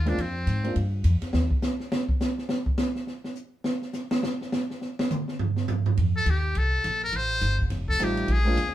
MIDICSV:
0, 0, Header, 1, 6, 480
1, 0, Start_track
1, 0, Tempo, 289855
1, 282, Time_signature, 4, 2, 24, 8
1, 14482, End_track
2, 0, Start_track
2, 0, Title_t, "Muted trumpet"
2, 0, Program_c, 0, 59
2, 0, Note_on_c, 0, 65, 67
2, 143, Note_on_c, 0, 62, 70
2, 167, Note_off_c, 0, 65, 0
2, 347, Note_on_c, 0, 60, 69
2, 372, Note_off_c, 0, 62, 0
2, 1274, Note_off_c, 0, 60, 0
2, 10213, Note_on_c, 0, 69, 87
2, 10434, Note_on_c, 0, 67, 75
2, 10458, Note_off_c, 0, 69, 0
2, 10896, Note_on_c, 0, 69, 78
2, 10920, Note_off_c, 0, 67, 0
2, 11636, Note_off_c, 0, 69, 0
2, 11656, Note_on_c, 0, 70, 86
2, 11862, Note_on_c, 0, 72, 87
2, 11887, Note_off_c, 0, 70, 0
2, 12599, Note_off_c, 0, 72, 0
2, 13077, Note_on_c, 0, 69, 86
2, 13310, Note_on_c, 0, 67, 77
2, 13335, Note_off_c, 0, 69, 0
2, 13782, Note_on_c, 0, 68, 82
2, 13807, Note_off_c, 0, 67, 0
2, 14482, Note_off_c, 0, 68, 0
2, 14482, End_track
3, 0, Start_track
3, 0, Title_t, "Upright piano"
3, 0, Program_c, 1, 0
3, 87, Note_on_c, 1, 56, 66
3, 96, Note_on_c, 1, 58, 58
3, 99, Note_on_c, 1, 60, 57
3, 100, Note_on_c, 1, 62, 55
3, 108, Note_on_c, 1, 65, 75
3, 261, Note_off_c, 1, 56, 0
3, 265, Note_off_c, 1, 58, 0
3, 267, Note_off_c, 1, 60, 0
3, 267, Note_off_c, 1, 62, 0
3, 271, Note_off_c, 1, 65, 0
3, 1055, Note_on_c, 1, 60, 50
3, 1056, Note_on_c, 1, 56, 52
3, 1059, Note_on_c, 1, 58, 51
3, 1066, Note_on_c, 1, 65, 62
3, 1067, Note_on_c, 1, 62, 49
3, 1225, Note_off_c, 1, 56, 0
3, 1225, Note_off_c, 1, 60, 0
3, 1227, Note_off_c, 1, 58, 0
3, 1230, Note_off_c, 1, 65, 0
3, 1231, Note_off_c, 1, 62, 0
3, 13236, Note_on_c, 1, 57, 58
3, 13238, Note_on_c, 1, 60, 57
3, 13241, Note_on_c, 1, 55, 61
3, 13246, Note_on_c, 1, 63, 56
3, 13247, Note_on_c, 1, 65, 69
3, 13718, Note_off_c, 1, 57, 0
3, 13719, Note_off_c, 1, 60, 0
3, 13721, Note_off_c, 1, 55, 0
3, 13723, Note_off_c, 1, 63, 0
3, 13723, Note_off_c, 1, 65, 0
3, 13992, Note_on_c, 1, 56, 71
3, 14003, Note_on_c, 1, 58, 66
3, 14007, Note_on_c, 1, 60, 63
3, 14007, Note_on_c, 1, 65, 83
3, 14012, Note_on_c, 1, 62, 65
3, 14173, Note_off_c, 1, 56, 0
3, 14179, Note_off_c, 1, 58, 0
3, 14180, Note_off_c, 1, 60, 0
3, 14180, Note_off_c, 1, 65, 0
3, 14183, Note_off_c, 1, 62, 0
3, 14482, End_track
4, 0, Start_track
4, 0, Title_t, "Upright bass"
4, 0, Program_c, 2, 32
4, 0, Note_on_c, 2, 39, 81
4, 272, Note_off_c, 2, 39, 0
4, 297, Note_on_c, 2, 41, 81
4, 754, Note_off_c, 2, 41, 0
4, 773, Note_on_c, 2, 44, 74
4, 1233, Note_off_c, 2, 44, 0
4, 1254, Note_on_c, 2, 43, 74
4, 1713, Note_off_c, 2, 43, 0
4, 1722, Note_on_c, 2, 41, 88
4, 1989, Note_off_c, 2, 41, 0
4, 2208, Note_on_c, 2, 39, 81
4, 2484, Note_off_c, 2, 39, 0
4, 9895, Note_on_c, 2, 41, 82
4, 10354, Note_off_c, 2, 41, 0
4, 10364, Note_on_c, 2, 39, 79
4, 10828, Note_off_c, 2, 39, 0
4, 10853, Note_on_c, 2, 36, 74
4, 11313, Note_off_c, 2, 36, 0
4, 11331, Note_on_c, 2, 34, 89
4, 11792, Note_off_c, 2, 34, 0
4, 11800, Note_on_c, 2, 33, 83
4, 12266, Note_off_c, 2, 33, 0
4, 12279, Note_on_c, 2, 31, 87
4, 12745, Note_off_c, 2, 31, 0
4, 12755, Note_on_c, 2, 29, 72
4, 13223, Note_off_c, 2, 29, 0
4, 13238, Note_on_c, 2, 33, 83
4, 13704, Note_off_c, 2, 33, 0
4, 13713, Note_on_c, 2, 34, 77
4, 14182, Note_off_c, 2, 34, 0
4, 14194, Note_on_c, 2, 38, 83
4, 14482, Note_off_c, 2, 38, 0
4, 14482, End_track
5, 0, Start_track
5, 0, Title_t, "Muted upright bass strokes"
5, 2013, Note_on_c, 9, 29, 37
5, 2178, Note_off_c, 9, 29, 0
5, 14482, End_track
6, 0, Start_track
6, 0, Title_t, "Drums"
6, 106, Note_on_c, 9, 51, 44
6, 109, Note_on_c, 9, 38, 34
6, 272, Note_off_c, 9, 51, 0
6, 275, Note_off_c, 9, 38, 0
6, 297, Note_on_c, 9, 36, 20
6, 305, Note_on_c, 9, 51, 56
6, 462, Note_off_c, 9, 36, 0
6, 470, Note_off_c, 9, 51, 0
6, 775, Note_on_c, 9, 36, 20
6, 778, Note_on_c, 9, 44, 51
6, 778, Note_on_c, 9, 51, 62
6, 940, Note_off_c, 9, 36, 0
6, 944, Note_off_c, 9, 44, 0
6, 944, Note_off_c, 9, 51, 0
6, 1067, Note_on_c, 9, 51, 44
6, 1233, Note_off_c, 9, 51, 0
6, 1252, Note_on_c, 9, 36, 21
6, 1253, Note_on_c, 9, 51, 54
6, 1417, Note_off_c, 9, 36, 0
6, 1419, Note_off_c, 9, 51, 0
6, 1723, Note_on_c, 9, 44, 48
6, 1723, Note_on_c, 9, 51, 65
6, 1726, Note_on_c, 9, 36, 23
6, 1889, Note_off_c, 9, 44, 0
6, 1889, Note_off_c, 9, 51, 0
6, 1891, Note_off_c, 9, 36, 0
6, 2015, Note_on_c, 9, 51, 47
6, 2018, Note_on_c, 9, 38, 44
6, 2181, Note_off_c, 9, 51, 0
6, 2184, Note_off_c, 9, 38, 0
6, 2202, Note_on_c, 9, 38, 85
6, 2368, Note_off_c, 9, 38, 0
6, 2491, Note_on_c, 9, 36, 72
6, 2656, Note_off_c, 9, 36, 0
6, 2686, Note_on_c, 9, 44, 55
6, 2690, Note_on_c, 9, 38, 86
6, 2852, Note_off_c, 9, 44, 0
6, 2855, Note_off_c, 9, 38, 0
6, 2978, Note_on_c, 9, 38, 38
6, 3144, Note_off_c, 9, 38, 0
6, 3177, Note_on_c, 9, 38, 86
6, 3342, Note_off_c, 9, 38, 0
6, 3454, Note_on_c, 9, 36, 78
6, 3620, Note_off_c, 9, 36, 0
6, 3653, Note_on_c, 9, 44, 54
6, 3656, Note_on_c, 9, 38, 90
6, 3819, Note_off_c, 9, 44, 0
6, 3822, Note_off_c, 9, 38, 0
6, 3946, Note_on_c, 9, 38, 39
6, 4112, Note_off_c, 9, 38, 0
6, 4121, Note_on_c, 9, 38, 87
6, 4287, Note_off_c, 9, 38, 0
6, 4409, Note_on_c, 9, 36, 72
6, 4574, Note_off_c, 9, 36, 0
6, 4598, Note_on_c, 9, 44, 56
6, 4601, Note_on_c, 9, 38, 91
6, 4763, Note_off_c, 9, 44, 0
6, 4766, Note_off_c, 9, 38, 0
6, 4892, Note_on_c, 9, 38, 42
6, 5057, Note_off_c, 9, 38, 0
6, 5083, Note_on_c, 9, 38, 35
6, 5249, Note_off_c, 9, 38, 0
6, 5372, Note_on_c, 9, 38, 47
6, 5537, Note_off_c, 9, 38, 0
6, 5552, Note_on_c, 9, 44, 53
6, 5717, Note_off_c, 9, 44, 0
6, 6032, Note_on_c, 9, 38, 86
6, 6198, Note_off_c, 9, 38, 0
6, 6323, Note_on_c, 9, 38, 33
6, 6489, Note_off_c, 9, 38, 0
6, 6512, Note_on_c, 9, 44, 58
6, 6515, Note_on_c, 9, 38, 47
6, 6677, Note_off_c, 9, 44, 0
6, 6680, Note_off_c, 9, 38, 0
6, 6806, Note_on_c, 9, 38, 88
6, 6972, Note_off_c, 9, 38, 0
6, 7007, Note_on_c, 9, 38, 90
6, 7173, Note_off_c, 9, 38, 0
6, 7307, Note_on_c, 9, 38, 44
6, 7473, Note_off_c, 9, 38, 0
6, 7489, Note_on_c, 9, 44, 55
6, 7492, Note_on_c, 9, 38, 87
6, 7654, Note_off_c, 9, 44, 0
6, 7658, Note_off_c, 9, 38, 0
6, 7787, Note_on_c, 9, 38, 44
6, 7953, Note_off_c, 9, 38, 0
6, 7971, Note_on_c, 9, 38, 39
6, 8136, Note_off_c, 9, 38, 0
6, 8268, Note_on_c, 9, 38, 88
6, 8434, Note_off_c, 9, 38, 0
6, 8452, Note_on_c, 9, 44, 53
6, 8455, Note_on_c, 9, 47, 93
6, 8617, Note_off_c, 9, 44, 0
6, 8620, Note_off_c, 9, 47, 0
6, 8744, Note_on_c, 9, 38, 46
6, 8909, Note_off_c, 9, 38, 0
6, 8932, Note_on_c, 9, 43, 87
6, 9098, Note_off_c, 9, 43, 0
6, 9215, Note_on_c, 9, 38, 49
6, 9380, Note_off_c, 9, 38, 0
6, 9405, Note_on_c, 9, 44, 50
6, 9409, Note_on_c, 9, 43, 90
6, 9571, Note_off_c, 9, 44, 0
6, 9574, Note_off_c, 9, 43, 0
6, 9704, Note_on_c, 9, 43, 91
6, 9869, Note_off_c, 9, 43, 0
6, 9893, Note_on_c, 9, 36, 17
6, 9893, Note_on_c, 9, 51, 59
6, 10059, Note_off_c, 9, 36, 0
6, 10059, Note_off_c, 9, 51, 0
6, 10368, Note_on_c, 9, 44, 53
6, 10368, Note_on_c, 9, 51, 64
6, 10371, Note_on_c, 9, 36, 23
6, 10533, Note_off_c, 9, 44, 0
6, 10533, Note_off_c, 9, 51, 0
6, 10537, Note_off_c, 9, 36, 0
6, 10846, Note_on_c, 9, 51, 61
6, 10850, Note_on_c, 9, 36, 19
6, 11012, Note_off_c, 9, 51, 0
6, 11016, Note_off_c, 9, 36, 0
6, 11328, Note_on_c, 9, 44, 59
6, 11328, Note_on_c, 9, 51, 64
6, 11330, Note_on_c, 9, 36, 24
6, 11493, Note_off_c, 9, 44, 0
6, 11493, Note_off_c, 9, 51, 0
6, 11496, Note_off_c, 9, 36, 0
6, 11799, Note_on_c, 9, 51, 63
6, 11803, Note_on_c, 9, 36, 19
6, 11965, Note_off_c, 9, 51, 0
6, 11968, Note_off_c, 9, 36, 0
6, 12277, Note_on_c, 9, 44, 54
6, 12277, Note_on_c, 9, 51, 65
6, 12280, Note_on_c, 9, 36, 24
6, 12442, Note_off_c, 9, 44, 0
6, 12442, Note_off_c, 9, 51, 0
6, 12446, Note_off_c, 9, 36, 0
6, 12567, Note_on_c, 9, 36, 57
6, 12732, Note_off_c, 9, 36, 0
6, 12753, Note_on_c, 9, 51, 59
6, 12756, Note_on_c, 9, 36, 17
6, 12757, Note_on_c, 9, 38, 35
6, 12919, Note_off_c, 9, 51, 0
6, 12922, Note_off_c, 9, 36, 0
6, 12922, Note_off_c, 9, 38, 0
6, 13046, Note_on_c, 9, 36, 56
6, 13212, Note_off_c, 9, 36, 0
6, 13245, Note_on_c, 9, 44, 65
6, 13245, Note_on_c, 9, 51, 68
6, 13410, Note_off_c, 9, 44, 0
6, 13410, Note_off_c, 9, 51, 0
6, 13532, Note_on_c, 9, 51, 47
6, 13698, Note_off_c, 9, 51, 0
6, 13713, Note_on_c, 9, 51, 60
6, 13717, Note_on_c, 9, 36, 24
6, 13879, Note_off_c, 9, 51, 0
6, 13883, Note_off_c, 9, 36, 0
6, 14197, Note_on_c, 9, 44, 63
6, 14197, Note_on_c, 9, 51, 68
6, 14199, Note_on_c, 9, 36, 20
6, 14352, Note_on_c, 9, 38, 29
6, 14362, Note_off_c, 9, 44, 0
6, 14362, Note_off_c, 9, 51, 0
6, 14365, Note_off_c, 9, 36, 0
6, 14482, Note_off_c, 9, 38, 0
6, 14482, End_track
0, 0, End_of_file